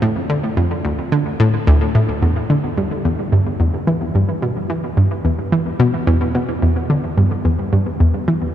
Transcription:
0.02 A2
0.30 D3
0.57 F2
0.85 D2
1.12 D3
1.40 A2
1.67 D2
1.95 A2
2.22 E2
2.50 D3
2.77 G2
3.05 E2
3.32 G2
3.60 E2
3.87 E3
4.15 G2
4.42 B2
4.70 E3
4.97 G2
5.25 E2
5.52 E3
5.80 B2
6.07 E2
6.35 B2
6.62 E2
6.90 D3
7.17 G2
7.45 E2
7.73 G2
8.00 E2
8.28 E3

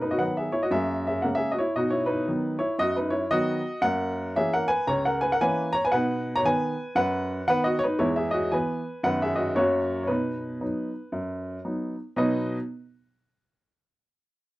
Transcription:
Already playing: B2 C#4 D#4 A#4
0.01 D#4 B4
0.11 F#4 D#5
0.18 D#3 F#3 B3 B4 F#5
0.37 G#4 E5
0.52 E4 C#5
0.63 F#4 D#5
0.71 F#2 A#3 G#4 E5
1.07 G#4 E5
1.22 C#3 G#3 A#3 A#4 F#5
1.35 G#4 E5
1.52 F#4 D#5
1.58 E4 C#5
1.76 B2 D#4 F#4 D#5
1.90 E4 C#5
2.06 D#4 B4
2.27 D#3 F#3 B3
2.59 E4 C#5
2.79 F#2 F#4 D#5
2.96 D#4 B4
3.10 E4 C#5
3.31 D#3 F#3 B3 F#4 D#5
3.82 F#2 A#3 A#4 F#5
4.36 E3 A#3 C#4 G#4 E5
4.53 A#4 F#5
4.68 B4 G#5
4.87 C#2 C#5 A#5
5.05 A#4 F#5
5.21 B4 G#5
5.32 A#4 F#5
5.41 E3 A#3 C#4 B4 G#5
5.73 C#5 A#5
5.85 B4 G#5
5.92 B2 D#4 B4 F#5
6.36 C#5 A#5
6.45 D#3 B3 B4 G#5
6.95 F#2 B4 F#5
7.48 D#3 B3 B4 F#5
7.64 F#4 D#5
7.79 C#5
7.84 D#4 B4
7.99 E2 G#3 E4 C#5
8.16 G#4 E5
8.31 F#4 D#5
8.51 E3 B3 B4 G#5
9.03 F#2 D#3 B3 B4 F#5
9.22 G#4 E5
9.35 F#4 D#5
9.55 F#2 F#3 A#3 C#4 F#4 C#5
10.03 C#5
10.07 B2 D#4 B4
10.61 F#3 B3 D#4
11.12 F#2
11.65 F#3 B3 D#4
12.16 B2 F#3 D#4 F#4 B4 D#5

